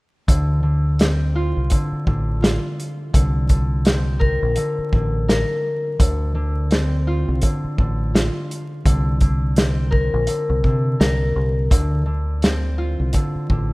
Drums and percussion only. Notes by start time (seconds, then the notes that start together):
0.28 kick, closed hi-hat
0.99 snare, closed hi-hat
1.70 kick, closed hi-hat
2.07 kick
2.44 snare, closed hi-hat
2.80 closed hi-hat
3.14 kick, closed hi-hat
3.49 kick, closed hi-hat
3.85 snare, closed hi-hat
4.21 kick
4.56 closed hi-hat
4.93 kick
5.29 snare, closed hi-hat
6.00 kick, closed hi-hat
6.71 snare, closed hi-hat
7.42 kick, closed hi-hat
7.78 kick
8.15 snare, closed hi-hat
8.51 closed hi-hat
8.86 kick, closed hi-hat
9.21 kick, closed hi-hat
9.56 snare, closed hi-hat
9.92 kick
10.27 closed hi-hat
10.64 kick
11.01 snare, closed hi-hat
11.71 kick, closed hi-hat
12.42 snare, closed hi-hat
13.13 kick, closed hi-hat
13.50 kick